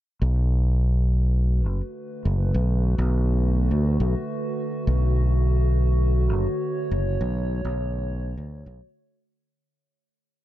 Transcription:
0.22 B1 D3
0.39 A3
0.60 B4
0.91 F#4
1.67 F#1
2.25 F#1
2.54 B1
2.98 B1
3.71 D2
4.00 B1
4.87 B1
6.06 C#5
6.33 F#1
6.91 F#1
7.21 B1
7.65 B1
8.37 D2
8.66 B1

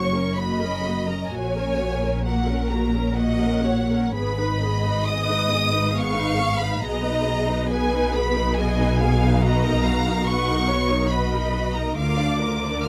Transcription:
Already playing: F#1 F#2 A#3 F#4 C#5 C#6
0.16 C#4 A#4
0.38 A#3 F#4 D#5 B5
0.62 C#4 A#4
0.85 A#3 F#4
1.09 C#4 A#4 A#5
1.32 A#1 A#2 A#3 F#4 C#5 G#5
1.56 C#4 A#4
1.79 A#3 F#4
2.02 C#4 A#4
2.25 A#3 F#4 A#4 F#5
2.48 C#4 A#4
2.71 A#3 F#4 A#5
2.94 C#4 A#4
3.16 A#3 F#4 D#5 F#5
3.41 C#4 A#4
3.65 A#3 F#4 C#5
3.91 C#4 A#4
4.14 G#1 G#2 B3 G#4 B4 B5
4.38 D#4 B4
4.62 B3 G#4 D#5
4.84 D#4 B4
5.05 B3 G#4 D#6
5.28 D#4 B4
5.50 B3 G#4
5.73 D#4 B4
5.94 B3 G#4 F5 C#6
6.15 D#4 B4
6.37 B3 G#4
6.59 D#4 B4 B5
6.80 B1 B2 B3 G#4 D#5 A#5
7.03 D#4 B4
7.26 B3 G#4
7.47 D#4 B4
7.69 B3 G#4 B4 G#5
7.91 D#4 B4
8.13 B3 G#4 B5
8.36 D#4 B4
8.56 B3 G#4 D#5 G#5
8.79 D#4 B4
9.01 B3 G#4 F5
9.23 D#4 B4
9.44 F#4 B4 D#5 A#5
9.65 D#4 A#4
9.86 F#4 B4 F5
10.07 D#4 A#4
10.28 F#4 B4 F#5 C#6
10.50 D#4 A#4
10.69 F#4 B4 C#5
10.90 D#4 A#4
11.10 F#4 B4 D#5 B5
11.33 D#4 A#4
11.54 F#4 B4
11.75 D#4 A#4 A#5
11.98 D2 D3 F4 A#4 F5 D6
12.19 D4 D5
12.40 F4 A#4
12.62 D4 D5
12.84 F4 A#4 F6

